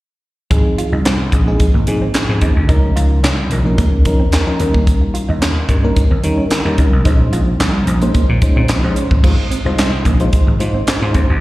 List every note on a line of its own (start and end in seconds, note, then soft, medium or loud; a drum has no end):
0.50 0.62 G#1 medium
0.50 0.90 F3 medium
0.50 0.91 C4 medium
0.50 0.91 D#4 medium
0.50 0.91 G#4 medium
0.50 kick medium
0.50 closed hi-hat medium
0.65 muted clean electric guitar stroke soft
0.78 0.86 F4 medium
0.78 closed hi-hat medium
0.92 1.14 C2 medium
0.92 1.00 D#4 medium
1.05 1.13 C4 medium
1.05 snare loud
1.05 clap medium
1.05 closed hi-hat medium
1.20 muted clean electric guitar stroke soft
1.32 1.54 A#1 medium
1.32 1.40 D#4 medium
1.32 1.40 G#4 medium
1.32 kick medium
1.32 closed hi-hat medium
1.47 1.66 F3 medium
1.47 1.54 G#3 medium
1.47 1.66 C4 medium
1.47 1.66 D#4 medium
1.47 1.66 G#4 loud
1.60 kick loud
1.60 closed hi-hat medium
1.74 1.84 G#1 medium
1.74 1.81 A#3 medium
1.87 2.08 G#2 loud
1.87 2.07 F3 medium
1.87 2.07 C4 medium
1.87 2.07 D#4 medium
1.87 2.08 G#4 medium
1.87 muted clean electric guitar stroke soft
1.87 closed hi-hat medium
2.02 2.09 C4 medium
2.14 snare loud
2.14 clap medium
2.14 closed hi-hat medium
2.29 2.39 G#2 medium
2.29 2.48 F3 medium
2.29 2.48 C4 medium
2.29 2.48 D#4 medium
2.29 2.48 G#4 medium
2.41 2.53 D#2 medium
2.41 2.50 D#4 medium
2.41 kick medium
2.41 closed hi-hat medium
2.56 2.66 D2 medium
2.69 2.90 C#2 medium
2.69 3.09 F3 medium
2.69 3.09 C#4 medium
2.69 2.77 D#4 medium
2.69 3.09 D#4 medium
2.69 3.09 A#4 medium
2.69 kick loud
2.69 closed hi-hat medium
2.96 3.17 C#2 medium
2.96 3.04 F4 medium
2.96 closed hi-hat medium
3.11 muted clean electric guitar stroke soft
3.23 3.45 C2 medium
3.23 3.31 C#4 medium
3.23 snare loud
3.23 clap medium
3.23 closed hi-hat medium
3.38 muted clean electric guitar stroke soft
3.51 3.78 A#1 medium
3.51 3.58 D#4 medium
3.51 3.58 A#4 medium
3.51 closed hi-hat medium
3.65 3.84 F3 medium
3.65 3.72 A#3 medium
3.65 3.84 C#4 medium
3.65 3.84 D#4 medium
3.65 3.85 A#4 medium
3.78 4.05 C#2 medium
3.78 3.86 A#3 medium
3.78 kick loud
3.78 closed hi-hat medium
4.05 4.27 D#2 medium
4.05 4.25 F3 medium
4.05 4.25 C#4 medium
4.05 4.26 D#4 medium
4.05 4.26 A#4 medium
4.05 muted clean electric guitar stroke soft
4.05 kick loud
4.05 closed hi-hat medium
4.20 4.27 C4 medium
4.32 muted clean electric guitar stroke soft
4.32 snare loud
4.32 clap medium
4.32 closed hi-hat medium
4.47 4.60 F3 medium
4.47 4.59 C#4 medium
4.47 4.59 D#4 medium
4.47 4.59 A#4 medium
4.60 4.92 D#2 medium
4.60 5.47 G3 medium
4.60 4.68 C#4 medium
4.60 5.48 C#4 medium
4.60 5.48 D#4 medium
4.60 5.48 A#4 medium
4.60 closed hi-hat medium
4.74 4.81 A#3 medium
4.74 kick medium
4.87 kick loud
4.87 closed hi-hat medium
5.01 muted clean electric guitar stroke soft
5.14 5.22 F4 medium
5.14 closed hi-hat medium
5.29 5.50 D#2 medium
5.29 5.36 D#4 medium
5.41 5.50 C#4 medium
5.41 snare loud
5.41 clap loud
5.41 closed hi-hat medium
5.56 muted clean electric guitar stroke soft
5.69 5.90 G2 medium
5.69 5.76 D#4 medium
5.69 5.76 A#4 medium
5.69 kick medium
5.69 closed hi-hat medium
5.83 6.03 G3 medium
5.83 5.90 A#3 medium
5.83 6.03 C#4 medium
5.83 6.03 D#4 medium
5.83 6.03 A#4 loud
5.96 kick loud
5.96 closed hi-hat medium
6.11 6.21 D#2 medium
6.11 6.18 C4 medium
6.23 6.45 D#3 loud
6.23 6.44 G3 medium
6.23 6.44 C#4 medium
6.23 6.44 D#4 medium
6.23 6.44 A#4 medium
6.23 muted clean electric guitar stroke soft
6.23 closed hi-hat medium
6.38 6.45 C#4 medium
6.51 snare loud
6.51 clap medium
6.51 closed hi-hat medium
6.65 6.75 D#2 medium
6.65 6.84 G3 medium
6.65 6.84 C#4 medium
6.65 6.84 D#4 medium
6.65 6.85 A#4 medium
6.78 6.89 C2 medium
6.78 6.86 D#4 medium
6.78 kick medium
6.78 closed hi-hat medium
6.93 7.02 B1 medium
7.05 7.26 A#1 medium
7.05 7.45 G#3 medium
7.05 7.45 C#4 medium
7.05 7.13 D#4 medium
7.05 7.45 D#4 medium
7.05 7.46 C5 medium
7.05 kick loud
7.05 closed hi-hat medium
7.32 7.54 A#1 medium
7.32 7.41 F4 medium
7.32 closed hi-hat medium
7.47 muted clean electric guitar stroke soft
7.60 7.81 C2 medium
7.60 7.68 C#4 medium
7.60 snare loud
7.60 clap medium
7.60 closed hi-hat medium
7.74 muted clean electric guitar stroke soft
7.87 8.08 A#1 medium
7.87 7.94 D#4 medium
7.87 7.94 C5 loud
7.87 closed hi-hat medium
8.02 8.21 G#3 medium
8.02 8.09 A#3 medium
8.02 8.21 C#4 medium
8.02 8.21 D#4 medium
8.02 8.21 C5 loud
8.02 closed hi-hat soft
8.14 8.22 A#3 medium
8.14 kick loud
8.14 closed hi-hat medium
8.29 8.39 A#2 medium
8.42 8.62 G#3 medium
8.42 8.62 C#4 medium
8.42 8.62 D#4 medium
8.42 8.62 C5 medium
8.42 muted clean electric guitar stroke soft
8.42 kick loud
8.42 closed hi-hat medium
8.56 8.66 A#2 medium
8.56 8.63 C4 medium
8.68 8.80 A#1 medium
8.68 muted clean electric guitar stroke soft
8.68 snare loud
8.68 clap medium
8.68 closed hi-hat medium
8.83 8.93 A#1 medium
8.83 9.03 G#3 medium
8.83 9.03 C#4 medium
8.83 9.03 D#4 medium
8.83 9.03 C5 medium
8.96 9.04 C#4 medium
8.96 closed hi-hat medium
9.10 9.21 G#1 medium
9.10 9.18 A#3 medium
9.10 kick medium
9.23 9.35 G#1 loud
9.23 9.31 G#3 medium
9.23 9.43 G#3 medium
9.23 9.44 D#4 medium
9.23 9.44 F4 medium
9.23 9.44 C5 medium
9.23 kick loud
9.23 crash medium
9.51 9.59 C4 medium
9.51 closed hi-hat medium
9.65 9.87 C2 medium
9.65 9.91 G#3 medium
9.65 9.91 D#4 medium
9.65 9.92 F4 medium
9.65 9.92 C5 loud
9.65 muted clean electric guitar stroke soft
9.78 snare loud
9.78 clap loud
9.78 closed hi-hat medium
10.05 10.27 A#1 medium
10.05 10.13 A#3 medium
10.05 kick medium
10.05 closed hi-hat medium
10.20 10.39 G#3 medium
10.20 10.39 D#4 medium
10.20 10.39 F4 medium
10.20 10.39 C5 medium
10.20 closed hi-hat soft
10.33 kick loud
10.33 closed hi-hat medium
10.47 10.57 G#1 medium
10.47 10.54 G#3 medium
10.60 10.81 G#2 loud
10.60 10.80 G#3 medium
10.60 10.80 D#4 medium
10.60 10.80 F4 medium
10.60 10.80 C5 medium
10.60 muted clean electric guitar stroke soft
10.60 closed hi-hat medium
10.74 10.81 C4 medium
10.87 snare loud
10.87 clap medium
10.87 closed hi-hat medium
11.01 11.12 G#2 medium
11.01 11.21 G#3 medium
11.01 11.21 D#4 medium
11.01 11.21 F4 medium
11.01 11.21 C5 loud
11.14 11.26 D#2 medium
11.14 11.22 C4 medium
11.14 kick medium
11.14 closed hi-hat medium
11.29 11.39 D2 medium